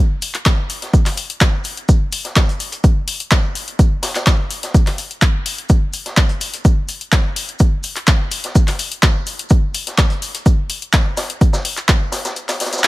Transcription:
0.22 open hi-hat loud
0.22 shaker medium
0.34 clap soft
0.34 closed hi-hat medium
0.46 kick loud
0.46 snare loud
0.46 clap loud
0.46 closed hi-hat medium
0.46 shaker medium
0.70 open hi-hat loud
0.70 shaker medium
0.82 snare soft
0.82 closed hi-hat medium
0.94 kick loud
0.94 closed hi-hat soft
0.94 shaker medium
1.05 snare soft
1.05 clap soft
1.05 open hi-hat medium
1.17 open hi-hat loud
1.17 shaker medium
1.30 closed hi-hat medium
1.41 kick loud
1.41 snare loud
1.41 clap loud
1.41 closed hi-hat medium
1.41 shaker medium
1.64 open hi-hat loud
1.64 shaker medium
1.77 closed hi-hat medium
1.89 kick loud
1.89 closed hi-hat soft
1.89 shaker medium
2.12 open hi-hat loud
2.12 shaker medium
2.24 snare soft
2.24 closed hi-hat medium
2.36 kick loud
2.36 snare loud
2.36 clap loud
2.36 closed hi-hat medium
2.36 shaker medium
2.49 closed hi-hat soft
2.60 open hi-hat loud
2.60 shaker medium
2.72 closed hi-hat soft
2.72 closed hi-hat medium
2.84 kick loud
2.84 closed hi-hat soft
2.84 shaker medium
3.08 open hi-hat loud
3.08 shaker medium
3.20 closed hi-hat medium
3.31 kick loud
3.31 snare loud
3.31 clap loud
3.31 closed hi-hat soft
3.31 shaker medium
3.55 open hi-hat loud
3.55 shaker medium
3.68 closed hi-hat medium
3.79 kick loud
3.79 closed hi-hat soft
3.79 shaker medium
4.03 snare loud
4.03 open hi-hat loud
4.03 shaker medium
4.15 snare loud
4.15 clap soft
4.15 closed hi-hat medium
4.15 shaker medium
4.26 kick loud
4.26 snare loud
4.26 clap loud
4.26 closed hi-hat soft
4.26 shaker medium
4.51 open hi-hat loud
4.51 shaker medium
4.63 snare soft
4.63 closed hi-hat medium
4.74 kick loud
4.74 closed hi-hat soft
4.74 shaker loud
4.86 snare soft
4.86 clap soft
4.86 open hi-hat medium
4.98 open hi-hat loud
4.98 shaker medium
5.11 closed hi-hat medium
5.22 kick loud
5.22 clap loud
5.22 closed hi-hat soft
5.22 shaker medium
5.46 open hi-hat loud
5.46 shaker medium
5.58 closed hi-hat medium
5.69 kick loud
5.69 closed hi-hat soft
5.69 shaker medium
5.93 open hi-hat loud
5.93 shaker medium
6.06 snare soft
6.06 closed hi-hat medium
6.17 kick loud
6.17 snare loud
6.17 clap loud
6.17 closed hi-hat soft
6.17 shaker medium
6.29 closed hi-hat soft
6.41 open hi-hat loud
6.41 shaker medium
6.54 closed hi-hat medium
6.54 closed hi-hat soft
6.65 kick loud
6.65 closed hi-hat soft
6.65 shaker medium
6.89 open hi-hat loud
6.89 shaker medium
7.01 closed hi-hat medium
7.12 kick loud
7.12 snare loud
7.12 clap loud
7.12 closed hi-hat soft
7.12 shaker medium
7.36 open hi-hat loud
7.36 shaker medium
7.49 closed hi-hat medium
7.59 kick loud
7.59 closed hi-hat soft
7.59 shaker medium
7.83 open hi-hat loud
7.83 shaker medium
7.96 clap soft
7.96 closed hi-hat medium
8.07 kick loud
8.07 snare loud
8.07 clap loud
8.07 closed hi-hat medium
8.07 shaker medium
8.31 open hi-hat loud
8.31 shaker medium
8.44 snare soft
8.44 closed hi-hat medium
8.55 kick loud
8.55 closed hi-hat soft
8.55 shaker loud
8.67 snare soft
8.67 clap soft
8.67 open hi-hat medium
8.79 open hi-hat medium
8.79 shaker medium
8.92 closed hi-hat medium
9.02 kick loud
9.02 snare loud
9.02 clap loud
9.02 closed hi-hat medium
9.02 shaker medium
9.27 open hi-hat loud
9.27 shaker medium
9.39 closed hi-hat medium
9.49 kick loud
9.49 closed hi-hat medium
9.49 shaker medium
9.74 open hi-hat loud
9.74 shaker medium
9.87 snare soft
9.87 closed hi-hat medium
9.98 kick loud
9.98 snare loud
9.98 clap loud
9.98 closed hi-hat medium
9.98 shaker medium
10.10 closed hi-hat soft
10.22 open hi-hat loud
10.22 shaker medium
10.34 closed hi-hat soft
10.34 closed hi-hat medium
10.46 kick loud
10.46 closed hi-hat medium
10.46 shaker medium
10.70 open hi-hat medium
10.70 shaker medium
10.82 closed hi-hat medium
10.93 kick loud
10.93 snare loud
10.93 clap loud
10.93 closed hi-hat medium
10.93 shaker medium
11.17 snare loud
11.17 open hi-hat loud
11.17 shaker medium
11.30 closed hi-hat medium
11.41 kick loud
11.41 closed hi-hat medium
11.41 shaker medium
11.53 snare medium
11.53 shaker medium
11.65 open hi-hat loud
11.77 clap soft
11.77 closed hi-hat medium
11.77 shaker medium
11.88 kick loud
11.88 snare loud
11.88 clap loud
11.88 closed hi-hat medium
11.88 shaker medium
12.12 snare loud
12.12 open hi-hat loud
12.12 shaker medium
12.25 snare loud
12.25 closed hi-hat medium
12.25 shaker medium
12.36 closed hi-hat medium
12.36 shaker medium
12.49 snare medium
12.49 clap soft
12.49 open hi-hat medium
12.49 shaker medium
12.60 snare medium
12.60 open hi-hat loud
12.60 shaker medium
12.66 snare medium
12.66 shaker medium
12.73 snare medium
12.73 closed hi-hat medium
12.73 shaker medium
12.78 snare medium
12.78 shaker medium
12.83 snare loud
12.83 clap loud
12.83 closed hi-hat medium
12.83 shaker medium

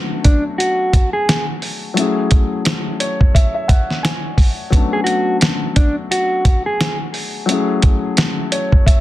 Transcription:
0.00 1.92 F#3 medium
0.00 1.94 A3 medium
0.00 1.93 B3 medium
0.00 1.93 C#4 medium
0.00 1.94 D4 medium
0.24 0.43 D4 medium
0.24 kick medium
0.24 closed hi-hat medium
0.58 1.10 F#4 medium
0.58 closed hi-hat medium
0.93 kick loud
0.93 closed hi-hat medium
1.13 1.45 G#4 medium
1.29 snare loud
1.29 closed hi-hat medium
1.62 open hi-hat soft
1.94 4.67 F#3 medium
1.94 4.68 A3 medium
1.94 4.69 C#4 medium
1.94 closed hi-hat loud
1.99 4.70 E4 medium
1.99 4.71 G#4 medium
2.31 kick medium
2.31 closed hi-hat medium
2.65 snare loud
2.65 closed hi-hat medium
3.00 3.32 C#5 medium
3.00 closed hi-hat medium
3.21 kick loud
3.34 3.53 E5 medium
3.34 kick medium
3.34 closed hi-hat medium
3.54 3.68 E5 medium
3.68 4.01 F#5 medium
3.68 kick loud
3.68 closed hi-hat medium
3.91 snare soft
4.03 4.68 G#5 medium
4.03 snare loud
4.03 closed hi-hat medium
4.38 kick medium
4.38 open hi-hat soft
4.70 7.43 F#3 medium
4.70 7.44 B3 medium
4.70 7.45 C#4 medium
4.70 kick loud
4.70 closed hi-hat loud
4.75 7.46 A3 medium
4.75 7.46 D4 medium
4.93 5.04 G#4 medium
5.04 5.36 F#4 medium
5.04 closed hi-hat medium
5.41 snare loud
5.41 closed hi-hat medium
5.76 5.95 D4 medium
5.76 kick medium
5.76 closed hi-hat medium
6.11 6.63 F#4 medium
6.11 closed hi-hat medium
6.45 kick loud
6.45 closed hi-hat medium
6.66 6.97 G#4 medium
6.81 snare loud
6.81 closed hi-hat medium
7.14 open hi-hat soft
7.46 9.01 F#3 medium
7.46 9.01 A3 medium
7.46 9.01 C#4 medium
7.46 closed hi-hat loud
7.51 9.01 E4 medium
7.51 9.01 G#4 medium
7.82 kick loud
7.82 closed hi-hat medium
8.17 snare loud
8.17 closed hi-hat medium
8.52 8.84 C#5 medium
8.52 closed hi-hat medium
8.72 kick medium
8.86 9.01 E5 medium
8.86 kick medium
8.86 closed hi-hat medium

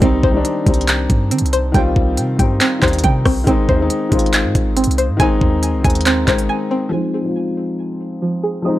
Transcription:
0.00 0.23 C2 loud
0.00 0.22 D#3 loud
0.00 0.23 G3 loud
0.00 1.30 C4 loud
0.00 0.24 C4 loud
0.00 kick loud
0.00 closed hi-hat medium
0.05 0.25 D#4 loud
0.23 0.44 C2 loud
0.23 1.52 C5 medium
0.23 kick medium
0.31 0.54 D#3 loud
0.31 0.55 G3 medium
0.31 0.56 C4 medium
0.37 0.57 D4 loud
0.45 closed hi-hat medium
0.64 1.08 C2 loud
0.64 1.23 D#3 medium
0.64 1.24 G3 medium
0.64 1.25 C4 medium
0.64 kick medium
0.64 closed hi-hat medium
0.70 1.26 D#4 medium
0.74 closed hi-hat medium
0.81 closed hi-hat medium
0.88 clap loud
0.88 closed hi-hat medium
1.10 1.33 G2 loud
1.10 kick loud
1.10 closed hi-hat medium
1.31 1.42 D#3 loud
1.31 2.60 C4 medium
1.31 closed hi-hat medium
1.39 1.73 C2 loud
1.39 closed hi-hat medium
1.46 closed hi-hat soft
1.53 2.81 C5 medium
1.53 closed hi-hat medium
1.72 1.95 C2 loud
1.72 2.17 D#3 loud
1.72 2.18 G3 loud
1.72 2.18 C4 loud
1.72 2.38 G5 loud
1.72 kick loud
1.72 closed hi-hat medium
1.78 2.19 F4 loud
1.96 2.19 C2 loud
1.96 kick medium
2.17 2.38 C3 loud
2.17 closed hi-hat medium
2.37 2.60 G2 loud
2.37 2.67 D#3 medium
2.37 2.68 G3 medium
2.37 2.69 C4 medium
2.37 3.03 G5 medium
2.37 kick loud
2.37 closed hi-hat medium
2.42 2.70 D#4 medium
2.61 3.24 C4 medium
2.61 clap loud
2.61 closed hi-hat medium
2.79 3.03 D#2 loud
2.79 3.24 D#3 loud
2.79 3.25 G3 medium
2.79 3.26 C4 medium
2.79 3.47 C5 medium
2.79 kick loud
2.79 clap medium
2.79 closed hi-hat soft
2.85 3.27 D#4 loud
2.85 closed hi-hat medium
2.93 closed hi-hat medium
2.99 closed hi-hat medium
3.04 3.25 C3 loud
3.04 3.47 G5 loud
3.04 kick loud
3.04 closed hi-hat medium
3.25 3.46 B1 loud
3.25 3.46 C4 medium
3.25 kick medium
3.25 cross-stick loud
3.25 open hi-hat medium
3.44 3.68 G#1 loud
3.44 3.67 D#3 loud
3.44 3.68 G#3 loud
3.44 4.75 C4 loud
3.44 3.69 C4 loud
3.44 kick loud
3.44 closed hi-hat medium
3.50 3.70 D#4 loud
3.69 3.89 D#2 loud
3.69 4.97 C5 medium
3.69 kick medium
3.77 4.00 D#3 medium
3.77 4.01 G#3 medium
3.77 4.02 C4 medium
3.82 4.02 D#4 loud
3.90 closed hi-hat medium
4.09 4.46 G#1 loud
4.09 4.68 D#3 loud
4.09 4.69 G#3 medium
4.09 4.70 C4 medium
4.09 kick loud
4.09 closed hi-hat medium
4.15 4.71 F4 medium
4.19 closed hi-hat medium
4.26 closed hi-hat medium
4.33 clap loud
4.33 closed hi-hat medium
4.44 4.55 G#2 loud
4.55 4.86 G#1 loud
4.55 kick loud
4.55 closed hi-hat medium
4.77 6.05 C4 medium
4.77 closed hi-hat medium
4.84 5.11 C2 loud
4.84 closed hi-hat medium
4.91 closed hi-hat soft
4.98 6.26 C5 medium
4.98 closed hi-hat medium
5.09 5.19 G#2 loud
5.17 5.40 G#1 loud
5.17 5.62 D#3 loud
5.17 5.63 G#3 loud
5.17 5.64 C4 loud
5.17 5.83 G#5 loud
5.17 kick loud
5.17 closed hi-hat medium
5.22 5.64 D#4 loud
5.41 5.75 D#2 loud
5.41 kick medium
5.63 closed hi-hat medium
5.74 5.84 C2 loud
5.82 6.26 D#2 loud
5.82 6.12 D#3 medium
5.82 6.13 G#3 medium
5.82 6.14 C4 medium
5.82 6.48 G#5 medium
5.82 kick loud
5.82 closed hi-hat medium
5.87 6.15 D#4 medium
5.87 closed hi-hat medium
5.95 closed hi-hat medium
6.01 closed hi-hat medium
6.06 6.70 C4 medium
6.06 clap loud
6.06 closed hi-hat medium
6.25 6.48 G#1 loud
6.25 6.70 D#3 medium
6.25 6.71 G#3 medium
6.25 6.72 C4 medium
6.25 6.92 C5 medium
6.25 kick loud
6.25 clap medium
6.25 closed hi-hat medium
6.31 6.73 D#4 medium
6.38 closed hi-hat medium
6.49 6.92 G#5 loud
6.71 6.92 C4 medium
6.89 7.12 F3 loud
6.89 8.21 F3 medium
6.89 7.13 G#3 medium
6.89 7.14 C4 loud
6.95 7.15 D#4 loud
7.14 8.42 G#4 medium
7.22 7.81 F3 medium
7.22 7.82 G#3 medium
7.22 7.83 C4 medium
7.28 7.84 F4 medium
8.22 8.79 F3 medium
8.43 8.79 G#4 medium
8.62 8.79 F3 loud
8.62 8.79 G#3 medium
8.62 8.79 C4 loud
8.62 8.79 D#6 loud
8.68 8.79 D#4 loud

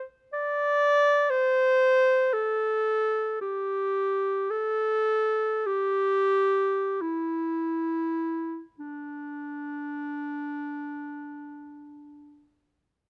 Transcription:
0.33 1.31 D5 loud
1.30 2.34 C5 loud
2.33 3.40 A4 loud
3.41 4.52 G4 loud
4.50 5.68 A4 loud
5.66 7.03 G4 loud
7.01 8.62 E4 medium
8.79 12.51 D4 medium

